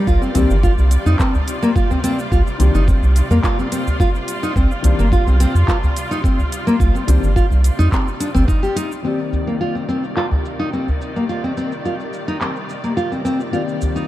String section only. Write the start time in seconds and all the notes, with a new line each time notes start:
Already playing: C3 G3 D5
0.08 F4
9.05 C3 D#3 G3 D5